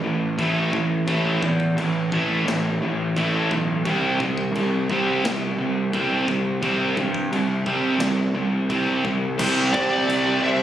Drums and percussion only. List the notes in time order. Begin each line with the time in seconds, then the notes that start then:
0.39 kick, china
0.73 kick
1.08 kick, china
1.43 kick
1.60 kick
1.78 china
2.12 kick
2.48 snare, china
3.17 kick, china
3.51 kick
3.85 kick, china
4.20 kick
4.38 kick
4.55 china
4.90 kick
5.25 snare, china
5.93 kick, china
6.28 kick
6.63 kick, china
6.97 kick
7.14 kick
7.33 china
7.66 kick
8.00 snare, china
8.70 kick, china
9.05 kick
9.39 kick, crash
9.74 kick
10.10 crash